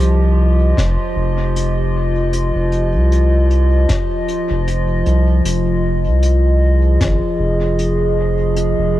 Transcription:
Already playing: C2 F3 F4 G4 D#5
0.00 closed hi-hat
0.77 F1, kick, snare, closed hi-hat
1.16 F1
1.56 closed hi-hat
2.33 closed hi-hat
2.55 F1
2.72 closed hi-hat
2.94 C2
3.12 closed hi-hat
3.51 closed hi-hat
3.89 kick, snare, closed hi-hat
4.28 closed hi-hat
4.51 F1
4.68 closed hi-hat
5.06 C2, closed hi-hat
5.45 F1, closed hi-hat
6.07 C2
6.23 closed hi-hat
6.37 G#4
7.01 G#1, kick, snare, closed hi-hat
7.39 F1
7.79 closed hi-hat
8.56 closed hi-hat
8.79 F1

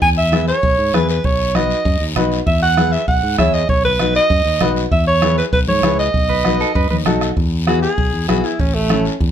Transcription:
0.02 E2 G#5, bombo low, long guiro
0.17 E5
0.32 E4 G#4 B4, bombo rim, high conga, short guiro
0.48 C#5, short guiro
0.63 B1, bombo low, long guiro
0.78 G#2
0.93 E2 E4 G#4 B4, bombo rim, high conga, short guiro
1.09 B4, short guiro
1.24 B1 C#5, bombo low, long guiro
1.55 D#4 F#4 B4 D#5, bombo rim, high conga, short guiro
1.71 short guiro
1.85 F#2, bombo low, long guiro
2.01 D#2
2.16 B1 D#4 F#4 B4, bombo rim, high conga, low conga, short guiro
2.32 short guiro
2.47 E2 E5, bombo low, long guiro
2.62 F#5
2.77 E4 G#4 B4, bombo rim, high conga, short guiro
2.92 E5, short guiro
3.08 B1 F#5, bombo low, long guiro
3.23 G#2
3.38 E2 E4 G#4 C#5 E5, bombo low, bombo rim, high conga, short guiro
3.54 D#5, short guiro
3.69 B1 C#5, bombo low, long guiro
3.84 B4, low conga
3.99 D#4 F#4 B4, bombo rim, high conga, short guiro
4.15 D#5, short guiro
4.30 F#2, bombo low, long guiro
4.45 D#2
4.61 B1 D#4 F#4 B4, bombo rim, high conga, low conga, short guiro
4.76 short guiro
4.91 E2 E5, bombo low, long guiro
5.07 C#5
5.22 E4 G#4 B4, bombo rim, high conga, short guiro
5.38 B4, short guiro
5.53 B1 B4, bombo low, long guiro
5.68 G#2 C#5, high conga
5.83 C#2 E4 G#4 B4, bombo rim, high conga, short guiro
5.99 D#5, short guiro
6.14 B1, bombo low, long guiro
6.29 B4, low conga
6.44 D#4 F#4 B4, bombo rim, high conga, short guiro
6.60 A4, short guiro
6.75 F#2 B4, bombo low, long guiro
6.91 D#2 B4, high conga
7.06 B1 D#4 F#4 A4, bombo rim, high conga, low conga, short guiro
7.21 bombo rim, short guiro
7.37 E2, bombo low, long guiro
7.67 B3 E4 F#4 G#4, bombo rim, high conga, short guiro
7.82 G#4, short guiro
7.98 B1, bombo low, long guiro
8.13 E2
8.28 B1 B3 E4 F#4 G#4, bombo rim, high conga, short guiro
8.44 E4, short guiro
8.59 A1 C#4, bombo low, long guiro
8.74 A3
8.90 C#4 E4 A4, bombo rim, high conga, short guiro
9.05 short guiro
9.20 E2, bombo low, long guiro

